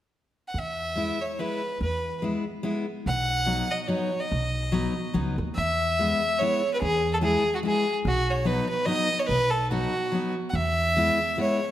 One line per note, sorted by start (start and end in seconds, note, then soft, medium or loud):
0.48 0.60 F#5 medium
0.54 1.09 E2 medium
0.59 1.23 E5 medium
0.96 1.17 G#3 soft
0.96 1.18 B3 soft
0.96 1.18 E4 soft
1.21 1.41 C#5 medium
1.39 1.60 G#3 soft
1.39 1.60 B3 soft
1.39 1.61 E4 medium
1.39 1.81 B4 medium
1.81 2.35 E2 medium
1.81 2.21 B4 medium
2.22 2.43 G#3 soft
2.22 2.43 B3 soft
2.22 2.44 E4 soft
2.63 2.84 G#3 medium
2.63 2.85 B3 soft
2.63 2.85 E4 medium
3.06 3.60 B1 medium
3.06 3.73 F#5 loud
3.46 3.67 F#3 soft
3.46 3.67 B3 soft
3.46 3.68 D#4 soft
3.71 3.84 D#5 medium
3.84 4.22 C#5 medium
3.84 3.89 D#5 soft
3.88 4.09 F#3 soft
3.88 4.09 B3 soft
3.88 4.09 D#4 soft
4.20 5.14 D#5 medium
4.32 4.86 B1 medium
4.72 4.93 F#3 medium
4.72 4.93 B3 medium
4.72 4.93 D#4 medium
5.14 5.35 C#2 medium
5.14 5.35 F#3 medium
5.14 5.35 B3 soft
5.14 5.36 D#4 medium
5.38 5.55 D#2 medium
5.55 6.11 E2 medium
5.55 6.40 E5 medium
5.99 6.19 G#3 soft
5.99 6.20 B3 soft
5.99 6.20 E4 soft
6.39 6.61 G#3 soft
6.39 6.61 B3 soft
6.39 6.61 E4 soft
6.39 6.71 C#5 medium
6.74 6.80 B4 medium
6.81 7.35 E2 medium
6.81 7.11 G#4 loud
7.14 7.18 A4 medium
7.21 7.42 G#3 soft
7.21 7.43 B3 soft
7.21 7.43 E4 medium
7.21 7.53 G#4 medium
7.55 7.59 F#4 medium
7.63 7.84 G#3 medium
7.63 7.85 B3 soft
7.63 7.84 E4 soft
7.63 7.95 G#4 medium
8.05 8.59 B1 medium
8.05 8.32 F#4 medium
8.30 8.48 C#5 medium
8.45 8.66 F#3 medium
8.45 8.66 B3 soft
8.45 8.66 D#4 medium
8.45 8.69 B4 medium
8.69 8.87 B4 medium
8.86 9.07 F#3 medium
8.86 9.08 B3 soft
8.86 9.08 D#4 medium
8.86 9.21 D#5 loud
9.19 9.28 C#5 medium
9.27 9.84 B1 medium
9.27 9.52 B4 loud
9.50 9.70 A4 medium
9.71 9.92 F#3 medium
9.71 9.92 B3 soft
9.71 9.92 D#4 medium
9.71 10.32 F#4 medium
10.12 10.33 F#3 soft
10.12 10.34 B3 soft
10.12 10.35 D#4 medium
10.50 11.09 E2 medium
10.50 10.57 F#5 medium
10.56 11.40 E5 loud
10.97 11.18 G#3 soft
10.97 11.18 B3 soft
10.97 11.19 E4 medium
11.38 11.59 G#3 soft
11.38 11.59 B3 soft
11.38 11.59 E4 medium
11.38 11.71 C#5 medium